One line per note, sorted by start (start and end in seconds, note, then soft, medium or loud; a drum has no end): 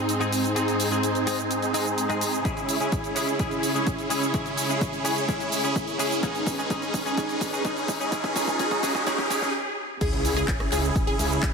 0.00 2.41 G#2 medium
0.00 6.19 G#3 medium
0.00 0.18 C4 medium
0.00 0.18 D#4 medium
0.00 2.41 D#4 medium
0.00 0.18 G#4 loud
0.00 2.41 C5 medium
0.09 closed hi-hat medium
0.09 cabasa soft
0.20 0.33 G#2 medium
0.20 0.33 G#3 medium
0.20 0.33 C4 medium
0.20 0.53 C4 medium
0.20 0.53 D#4 medium
0.20 0.33 D#4 medium
0.20 0.53 G#4 medium
0.20 0.33 G#4 loud
0.20 closed hi-hat soft
0.20 cabasa soft
0.32 open hi-hat loud
0.32 cabasa medium
0.44 closed hi-hat soft
0.44 cabasa soft
0.55 0.88 G#2 medium
0.55 0.88 G#3 medium
0.55 0.89 C4 medium
0.55 0.89 C4 loud
0.55 0.89 D#4 medium
0.55 0.89 G#4 loud
0.55 0.89 G#4 medium
0.55 closed hi-hat medium
0.55 cabasa soft
0.68 closed hi-hat soft
0.68 cabasa soft
0.80 open hi-hat loud
0.80 cabasa medium
0.91 1.04 G#2 medium
0.91 1.04 G#3 medium
0.91 1.04 C4 medium
0.91 1.24 C4 medium
0.91 1.24 D#4 medium
0.91 1.04 D#4 medium
0.91 1.24 G#4 loud
0.91 1.04 G#4 medium
0.91 closed hi-hat soft
0.91 cabasa soft
1.03 closed hi-hat medium
1.03 cabasa soft
1.15 closed hi-hat soft
1.15 cabasa soft
1.26 1.39 G#2 medium
1.26 1.39 G#3 medium
1.26 1.39 C4 medium
1.26 1.60 C4 medium
1.26 1.60 D#4 medium
1.26 1.39 D#4 medium
1.26 1.60 G#4 loud
1.26 1.40 G#4 loud
1.26 open hi-hat loud
1.26 cabasa medium
1.39 closed hi-hat soft
1.39 cabasa soft
1.51 closed hi-hat medium
1.51 cabasa soft
1.62 2.07 C4 medium
1.62 2.07 D#4 medium
1.62 2.07 G#4 loud
1.62 closed hi-hat soft
1.62 cabasa soft
1.73 1.86 G#2 medium
1.73 1.86 G#3 medium
1.73 1.87 C4 medium
1.73 1.87 D#4 medium
1.73 1.87 G#4 medium
1.73 open hi-hat loud
1.73 cabasa medium
1.86 closed hi-hat soft
1.86 cabasa soft
1.98 closed hi-hat medium
1.98 cabasa soft
2.09 2.22 G#2 loud
2.09 2.22 G#3 medium
2.09 2.22 C4 medium
2.09 2.42 C4 medium
2.09 2.42 D#4 medium
2.09 2.22 D#4 medium
2.09 2.42 G#4 loud
2.09 2.22 G#4 loud
2.09 closed hi-hat soft
2.09 cabasa soft
2.21 open hi-hat loud
2.21 cabasa medium
2.34 cabasa soft
2.44 2.77 C#3 medium
2.44 6.19 C#3 medium
2.44 2.77 G#3 medium
2.44 2.78 C#4 medium
2.44 2.78 E4 medium
2.44 6.19 E4 medium
2.44 2.78 E4 medium
2.44 2.78 G#4 medium
2.44 6.19 C#5 medium
2.44 kick loud
2.44 closed hi-hat medium
2.44 riser medium
2.44 cabasa soft
2.57 closed hi-hat soft
2.57 cabasa soft
2.69 open hi-hat loud
2.69 cabasa medium
2.80 2.93 C#3 medium
2.80 2.93 G#3 medium
2.80 2.93 C#4 medium
2.80 3.13 C#4 medium
2.80 3.13 E4 medium
2.80 2.93 E4 medium
2.80 3.13 G#4 medium
2.80 2.93 G#4 medium
2.80 closed hi-hat soft
2.80 cabasa soft
2.92 kick loud
2.92 closed hi-hat medium
2.92 cabasa soft
3.04 closed hi-hat soft
3.04 cabasa soft
3.15 3.28 C#3 medium
3.15 3.28 G#3 medium
3.15 3.28 C#4 medium
3.15 3.38 C#4 medium
3.15 3.38 E4 medium
3.15 3.28 E4 medium
3.15 3.38 G#4 medium
3.15 3.29 G#4 medium
3.15 open hi-hat loud
3.15 cabasa medium
3.28 closed hi-hat soft
3.28 cabasa soft
3.39 3.72 C#3 medium
3.39 3.72 G#3 medium
3.39 3.72 C#4 medium
3.39 3.72 E4 medium
3.39 3.72 G#4 loud
3.39 3.72 G#4 medium
3.39 kick loud
3.39 closed hi-hat medium
3.39 cabasa soft
3.51 closed hi-hat soft
3.51 cabasa soft
3.63 open hi-hat loud
3.63 cabasa medium
3.74 3.87 C#3 medium
3.74 3.87 G#3 medium
3.74 3.87 C#4 medium
3.74 4.08 C#4 medium
3.74 4.08 E4 medium
3.74 3.88 E4 medium
3.74 4.08 G#4 medium
3.74 3.88 G#4 medium
3.74 cabasa soft
3.87 kick loud
3.87 closed hi-hat medium
3.87 cabasa soft
3.98 closed hi-hat soft
3.98 cabasa soft
4.10 4.22 C#3 medium
4.10 4.23 G#3 medium
4.10 4.23 C#4 medium
4.10 4.32 C#4 medium
4.10 4.32 E4 medium
4.10 4.23 E4 medium
4.10 4.32 G#4 medium
4.10 4.23 G#4 loud
4.10 open hi-hat loud
4.10 cabasa medium
4.22 closed hi-hat soft
4.22 cabasa soft
4.33 4.66 C#3 medium
4.33 4.67 G#3 medium
4.33 4.67 C#4 medium
4.33 4.67 E4 medium
4.33 4.67 G#4 loud
4.33 4.67 G#4 medium
4.33 kick loud
4.33 closed hi-hat medium
4.33 cabasa soft
4.46 closed hi-hat soft
4.46 cabasa soft
4.58 open hi-hat loud
4.58 cabasa medium
4.69 4.82 C#3 medium
4.69 4.82 G#3 medium
4.69 4.82 C#4 medium
4.69 5.02 C#4 medium
4.69 5.02 E4 medium
4.69 4.82 E4 medium
4.69 5.02 G#4 medium
4.69 4.82 G#4 medium
4.69 closed hi-hat soft
4.69 cabasa soft
4.81 kick loud
4.81 closed hi-hat medium
4.81 cabasa soft
4.93 closed hi-hat soft
4.93 cabasa soft
5.04 5.17 C#3 medium
5.04 5.17 G#3 medium
5.04 5.17 C#4 medium
5.04 5.27 C#4 medium
5.04 5.27 E4 medium
5.04 5.17 E4 medium
5.04 5.27 G#4 medium
5.04 5.18 G#4 loud
5.04 open hi-hat loud
5.04 cabasa medium
5.17 closed hi-hat soft
5.17 cabasa soft
5.28 5.61 C#3 medium
5.28 5.61 G#3 medium
5.28 5.61 C#4 medium
5.28 5.61 C#4 loud
5.28 5.61 E4 medium
5.28 5.61 G#4 loud
5.28 5.61 G#4 medium
5.28 kick loud
5.28 closed hi-hat medium
5.28 cabasa soft
5.40 closed hi-hat soft
5.40 cabasa soft
5.52 open hi-hat loud
5.52 cabasa medium
5.63 5.76 C#3 medium
5.63 5.76 G#3 medium
5.63 5.76 C#4 medium
5.63 5.97 C#4 medium
5.63 5.97 E4 medium
5.63 5.76 E4 medium
5.63 5.97 G#4 medium
5.63 5.77 G#4 medium
5.63 closed hi-hat soft
5.63 cabasa soft
5.76 kick loud
5.76 closed hi-hat medium
5.76 cabasa soft
5.88 closed hi-hat soft
5.88 cabasa soft
5.99 6.12 C#3 medium
5.99 6.12 G#3 medium
5.99 6.12 C#4 medium
5.99 6.21 C#4 medium
5.99 6.21 E4 medium
5.99 6.12 E4 medium
5.99 6.21 G#4 medium
5.99 6.12 G#4 loud
5.99 open hi-hat loud
5.99 cabasa medium
6.11 closed hi-hat soft
6.11 cabasa soft
6.22 9.50 G#2 medium
6.22 6.55 C#3 medium
6.22 9.50 G#3 medium
6.22 6.55 G#3 medium
6.22 6.56 C#4 medium
6.22 6.56 C#4 loud
6.22 6.56 D#4 medium
6.22 9.50 D#4 medium
6.22 6.56 D#4 medium
6.22 6.56 G#4 loud
6.22 6.56 G#4 medium
6.22 9.50 B4 medium
6.22 kick loud
6.22 closed hi-hat loud
6.22 cabasa soft
6.35 closed hi-hat soft
6.35 cabasa soft
6.47 kick loud
6.47 open hi-hat loud
6.47 cabasa medium
6.58 6.68 C#3 medium
6.58 6.68 G#3 medium
6.58 6.68 C#4 medium
6.58 6.68 D#4 medium
6.58 6.69 D#4 medium
6.58 6.68 G#4 loud
6.58 6.69 G#4 medium
6.58 closed hi-hat soft
6.58 cabasa soft
6.69 7.03 C#3 medium
6.69 7.03 G#3 medium
6.69 7.03 C#4 medium
6.69 7.03 C#4 loud
6.69 7.03 D#4 medium
6.69 7.03 G#4 loud
6.69 7.03 G#4 medium
6.69 kick loud
6.69 closed hi-hat loud
6.69 cabasa soft
6.82 closed hi-hat soft
6.82 cabasa soft
6.94 kick loud
6.94 open hi-hat loud
6.94 cabasa medium
7.05 7.15 C#3 medium
7.05 7.15 G#3 medium
7.05 7.16 C#4 medium
7.05 7.16 D#4 medium
7.05 7.16 G#4 loud
7.05 7.16 G#4 medium
7.05 closed hi-hat soft
7.05 cabasa soft
7.17 7.50 C#3 medium
7.17 7.50 G#3 medium
7.17 7.50 C#4 medium
7.17 7.50 C#4 loud
7.17 7.50 D#4 medium
7.17 7.50 G#4 loud
7.17 7.50 G#4 medium
7.17 kick loud
7.17 closed hi-hat medium
7.17 cabasa soft
7.29 closed hi-hat soft
7.29 cabasa soft
7.41 kick loud
7.41 open hi-hat loud
7.41 cabasa medium
7.52 7.63 C#3 medium
7.52 7.63 G#3 medium
7.52 7.63 C#4 medium
7.52 7.63 D#4 medium
7.52 7.63 G#4 loud
7.52 7.63 G#4 medium
7.52 closed hi-hat soft
7.52 cabasa soft
7.64 7.97 C#3 medium
7.64 7.97 G#3 medium
7.64 7.97 C#4 medium
7.64 7.97 C#4 loud
7.64 7.97 D#4 medium
7.64 7.97 G#4 loud
7.64 7.98 G#4 medium
7.64 kick loud
7.64 closed hi-hat loud
7.64 cabasa soft
7.77 closed hi-hat soft
7.77 cabasa soft
7.88 kick loud
7.88 open hi-hat medium
7.88 cabasa medium
8.00 8.10 C#3 medium
8.00 8.10 G#3 medium
8.00 8.10 C#4 medium
8.00 8.10 D#4 medium
8.00 8.10 G#4 loud
8.00 8.11 G#4 medium
8.00 closed hi-hat soft
8.00 cabasa soft
8.11 8.34 C#3 medium
8.11 8.34 G#3 medium
8.11 8.34 C#4 medium
8.11 8.34 C#4 loud
8.11 8.34 D#4 medium
8.11 8.34 G#4 loud
8.11 8.34 G#4 medium
8.11 kick loud
8.11 closed hi-hat loud
8.11 cabasa soft
8.24 kick medium
8.24 closed hi-hat soft
8.24 cabasa soft
8.35 8.57 C#3 medium
8.35 8.57 G#3 medium
8.35 8.57 C#4 medium
8.35 8.57 C#4 loud
8.35 8.58 D#4 medium
8.35 8.57 G#4 loud
8.35 8.58 G#4 medium
8.35 kick loud
8.35 open hi-hat loud
8.35 cabasa medium
8.48 kick medium
8.48 closed hi-hat soft
8.48 cabasa soft
8.59 8.81 C#3 medium
8.59 8.81 G#3 medium
8.59 8.81 C#4 medium
8.59 8.81 C#4 loud
8.59 8.81 D#4 medium
8.59 8.81 G#4 loud
8.59 8.81 G#4 medium
8.59 kick loud
8.59 closed hi-hat loud
8.59 cabasa soft
8.71 kick medium
8.71 closed hi-hat soft
8.71 cabasa soft
8.82 9.04 C#3 medium
8.82 9.04 G#3 medium
8.82 9.05 C#4 medium
8.82 9.05 C#4 loud
8.82 9.05 D#4 medium
8.82 9.05 G#4 loud
8.82 9.05 G#4 medium
8.82 kick loud
8.82 open hi-hat loud
8.82 cabasa medium
8.95 kick medium
8.95 cabasa soft
9.06 9.28 C#3 medium
9.06 9.28 G#3 medium
9.06 9.28 C#4 medium
9.06 9.28 C#4 loud
9.06 9.28 D#4 medium
9.06 9.28 G#4 loud
9.06 9.29 G#4 medium
9.06 kick loud
9.06 closed hi-hat medium
9.06 cabasa soft
9.18 kick loud
9.18 closed hi-hat soft
9.18 cabasa soft
9.29 9.52 C#3 medium
9.29 9.52 G#3 medium
9.29 9.52 C#4 medium
9.29 9.52 C#4 loud
9.29 9.52 D#4 medium
9.29 9.52 G#4 loud
9.29 9.52 G#4 medium
9.29 kick loud
9.29 open hi-hat loud
9.29 cabasa medium
9.42 kick medium
9.42 closed hi-hat soft
9.42 cabasa soft
10.01 11.54 C#3 medium
10.01 10.34 C#4 loud
10.01 11.54 C#4 medium
10.01 10.34 E4 medium
10.01 11.54 E4 medium
10.01 10.34 G#4 loud
10.01 11.54 G#4 medium
10.01 kick loud
10.01 closed hi-hat loud
10.01 crash loud
10.01 sub drop medium
10.01 cabasa soft
10.13 10.22 C#2 loud
10.13 closed hi-hat soft
10.25 10.43 C#2 loud
10.25 open hi-hat loud
10.25 cabasa medium
10.36 10.69 C#4 medium
10.36 10.69 E4 medium
10.36 10.69 G#4 loud
10.36 cross-stick medium
10.36 cabasa soft
10.48 kick loud
10.48 clap loud
10.48 closed hi-hat loud
10.48 cabasa soft
10.60 cross-stick medium
10.60 closed hi-hat soft
10.72 10.90 C#2 medium
10.72 11.05 C#4 medium
10.72 11.05 E4 medium
10.72 11.04 G#4 loud
10.72 11.05 G#4 loud
10.72 clap medium
10.72 open hi-hat loud
10.72 cabasa medium
10.84 closed hi-hat soft
10.84 cabasa soft
10.96 kick loud
10.96 closed hi-hat loud
10.96 cabasa soft
11.07 11.52 C#4 medium
11.07 11.52 E4 medium
11.07 11.52 G#4 loud
11.07 closed hi-hat soft
11.19 11.37 C#2 medium
11.19 open hi-hat loud
11.19 cabasa medium
11.31 closed hi-hat soft
11.31 cabasa soft
11.43 kick loud
11.43 clap loud
11.43 closed hi-hat loud
11.43 cabasa soft